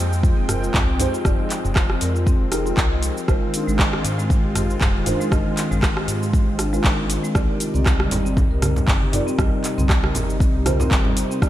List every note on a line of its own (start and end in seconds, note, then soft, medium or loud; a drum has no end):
0.00 0.31 F2 medium
0.00 3.24 F3 medium
0.00 3.24 G#3 medium
0.00 7.31 C4 medium
0.00 0.97 D#4 loud
0.00 0.97 G4 medium
0.00 0.97 G#4 medium
0.00 0.97 C5 loud
0.00 3.24 G5 medium
0.13 cabasa medium
0.23 0.37 F4 medium
0.23 kick loud
0.23 cabasa soft
0.37 0.69 F1 medium
0.37 0.43 C4 medium
0.48 0.62 A#4 medium
0.48 cross-stick medium
0.48 mid tom loud
0.48 open hi-hat medium
0.48 cabasa loud
0.62 0.69 F4 loud
0.62 cabasa medium
0.74 1.07 C2 medium
0.74 0.82 C4 loud
0.74 kick loud
0.74 clap loud
0.74 mid tom medium
0.74 cabasa soft
0.99 1.22 D#4 medium
0.99 1.22 G4 medium
0.99 1.22 G#4 medium
0.99 1.22 C5 loud
0.99 mid tom loud
0.99 open hi-hat medium
0.99 cabasa medium
1.13 1.24 F4 loud
1.13 cabasa medium
1.25 1.35 F1 loud
1.25 2.50 D#4 medium
1.25 2.50 G4 medium
1.25 2.50 G#4 medium
1.25 2.50 D5 medium
1.25 kick loud
1.25 cross-stick medium
1.25 mid tom medium
1.25 cabasa soft
1.39 1.45 D#5 medium
1.50 clap medium
1.50 open hi-hat medium
1.50 cabasa medium
1.64 1.96 F1 loud
1.64 mid tom medium
1.64 cabasa medium
1.76 1.89 F4 medium
1.76 kick loud
1.76 cross-stick medium
1.76 clap loud
1.76 cabasa soft
1.90 1.96 C4 medium
1.90 cross-stick medium
2.01 2.34 F2 medium
2.01 2.15 A#4 medium
2.01 open hi-hat loud
2.01 cabasa medium
2.15 2.21 F4 loud
2.15 cabasa soft
2.26 2.34 C4 loud
2.26 kick loud
2.26 cabasa soft
2.41 2.72 F1 medium
2.52 3.26 D#4 medium
2.52 3.26 G4 medium
2.52 3.26 G#4 medium
2.52 3.26 A#4 loud
2.52 cross-stick medium
2.52 open hi-hat loud
2.52 cabasa medium
2.66 2.77 F4 loud
2.66 cabasa medium
2.77 3.10 C2 medium
2.77 kick loud
2.77 clap loud
2.77 cabasa soft
2.92 2.98 D#5 medium
3.03 open hi-hat medium
3.03 cabasa medium
3.17 cabasa medium
3.28 3.38 G#1 loud
3.28 3.42 G#3 medium
3.28 7.31 G#3 medium
3.28 5.04 D#4 medium
3.28 5.04 F4 medium
3.28 7.31 F4 medium
3.28 5.04 A#4 medium
3.28 5.04 C5 loud
3.28 kick loud
3.28 cross-stick medium
3.28 cabasa soft
3.42 3.48 D#3 medium
3.54 3.67 D4 medium
3.54 open hi-hat medium
3.54 cabasa medium
3.68 3.99 G#1 loud
3.68 3.74 G#3 loud
3.68 cabasa soft
3.79 3.87 D#3 loud
3.79 kick loud
3.79 cross-stick medium
3.79 clap loud
3.79 cabasa soft
3.93 cross-stick medium
4.05 4.38 G#2 medium
4.05 open hi-hat loud
4.05 cabasa medium
4.18 4.29 G#3 loud
4.18 cabasa medium
4.30 kick loud
4.30 cabasa soft
4.44 4.75 G#1 medium
4.44 4.50 G4 medium
4.55 cross-stick medium
4.55 mid tom loud
4.55 open hi-hat loud
4.55 cabasa medium
4.70 cabasa soft
4.81 5.14 D#1 medium
4.81 4.94 G#3 medium
4.81 kick loud
4.81 clap loud
4.81 mid tom medium
4.81 cabasa soft
4.95 5.01 D#3 medium
5.06 5.20 D4 medium
5.06 5.29 D#4 medium
5.06 5.29 F4 medium
5.06 5.29 A#4 medium
5.06 5.29 C5 medium
5.06 mid tom loud
5.06 open hi-hat medium
5.06 cabasa medium
5.20 5.27 G#3 loud
5.20 cabasa medium
5.31 5.42 G#1 loud
5.31 5.39 D#3 loud
5.31 6.56 D#4 medium
5.31 6.57 F4 medium
5.31 6.56 A#4 medium
5.31 6.56 D#5 medium
5.31 kick loud
5.31 cross-stick loud
5.31 mid tom medium
5.31 cabasa soft
5.57 clap medium
5.57 open hi-hat loud
5.57 cabasa medium
5.71 6.03 G#1 loud
5.71 5.82 G#3 loud
5.71 mid tom medium
5.71 cabasa soft
5.83 kick loud
5.83 cross-stick loud
5.83 clap loud
5.83 cabasa soft
5.96 6.03 G4 medium
5.96 cross-stick loud
6.08 6.41 G#2 medium
6.08 open hi-hat medium
6.08 cabasa loud
6.23 cabasa medium
6.33 6.47 G#3 medium
6.33 kick loud
6.33 cabasa soft
6.47 6.79 G#1 medium
6.47 6.54 D#3 medium
6.59 6.72 D4 medium
6.59 cross-stick medium
6.59 open hi-hat loud
6.59 cabasa medium
6.73 6.79 G#3 loud
6.73 7.32 D#4 medium
6.73 7.32 F4 medium
6.73 7.32 A#4 medium
6.73 7.32 C5 medium
6.73 cabasa soft
6.84 7.17 G#1 medium
6.84 6.92 D#3 loud
6.84 kick loud
6.84 clap loud
6.84 cabasa soft
7.10 open hi-hat loud
7.10 cabasa medium
7.23 7.34 G#3 loud
7.23 cabasa medium
7.35 7.45 C2 loud
7.35 11.49 C3 medium
7.35 11.49 G3 medium
7.35 7.48 C4 medium
7.35 9.10 D#4 medium
7.35 11.49 D#4 medium
7.35 9.10 G4 medium
7.35 9.10 A#4 medium
7.35 9.10 D5 loud
7.35 kick loud
7.35 cross-stick loud
7.35 cabasa soft
7.49 7.59 G4 medium
7.60 7.74 F4 medium
7.60 open hi-hat loud
7.60 cabasa loud
7.74 8.06 C2 loud
7.74 7.81 C4 loud
7.74 high conga medium
7.74 cabasa medium
7.86 7.94 G3 loud
7.86 kick loud
7.86 cross-stick loud
7.86 clap loud
7.86 cabasa soft
8.00 cross-stick loud
8.00 high conga medium
8.11 8.44 G1 medium
8.11 open hi-hat loud
8.11 low conga loud
8.11 cabasa loud
8.25 8.36 C4 loud
8.25 cabasa medium
8.37 kick loud
8.37 high conga medium
8.37 low conga loud
8.37 cabasa soft
8.51 8.82 C2 medium
8.51 8.57 A#4 medium
8.62 cross-stick medium
8.62 mid tom medium
8.62 open hi-hat medium
8.62 high conga loud
8.62 cabasa medium
8.76 low conga loud
8.76 cabasa medium
8.88 9.21 G1 medium
8.88 9.01 C4 medium
8.88 kick loud
8.88 clap loud
8.88 mid tom medium
8.88 cabasa soft
9.02 9.12 G4 medium
9.02 high conga medium
9.13 9.36 D#4 medium
9.13 9.27 F4 medium
9.13 9.36 G4 medium
9.13 9.36 A#4 medium
9.13 9.36 D5 medium
9.13 mid tom loud
9.13 open hi-hat loud
9.13 cabasa medium
9.27 9.33 C4 loud
9.27 cabasa medium
9.38 9.48 C2 loud
9.38 9.46 G3 loud
9.38 10.63 D#4 medium
9.38 10.63 G4 medium
9.38 10.63 A#4 medium
9.38 10.63 D#5 medium
9.38 kick loud
9.38 cross-stick loud
9.38 mid tom medium
9.38 cabasa soft
9.64 clap medium
9.64 open hi-hat medium
9.64 cabasa loud
9.78 10.10 C2 loud
9.78 9.89 C4 loud
9.78 mid tom medium
9.78 high conga medium
9.78 cabasa medium
9.89 kick loud
9.89 cross-stick loud
9.89 clap loud
9.89 cabasa soft
10.03 10.10 A#4 medium
10.03 cross-stick loud
10.03 high conga medium
10.15 10.48 G1 medium
10.15 open hi-hat medium
10.15 low conga loud
10.15 cabasa loud
10.30 cabasa medium
10.40 10.54 C4 medium
10.40 kick loud
10.40 cabasa soft
10.54 10.86 C2 medium
10.54 10.65 G4 medium
10.65 11.39 D#4 loud
10.65 10.79 F4 medium
10.65 11.39 G4 medium
10.65 11.39 A#4 medium
10.65 11.39 C5 loud
10.65 cross-stick medium
10.65 open hi-hat loud
10.65 high conga loud
10.65 low conga medium
10.65 cabasa loud
10.80 10.86 C4 loud
10.80 low conga loud
10.80 cabasa medium
10.91 11.24 G1 medium
10.91 10.99 G3 loud
10.91 kick loud
10.91 clap loud
10.91 cabasa soft
11.05 low conga loud
11.17 open hi-hat loud
11.17 cabasa loud
11.31 11.41 C4 loud
11.31 cabasa medium
11.42 11.49 C2 loud
11.42 11.49 D#4 medium
11.42 11.49 G4 medium
11.42 11.49 A#4 medium
11.42 11.49 D5 loud
11.42 kick loud
11.42 cross-stick medium
11.42 cabasa soft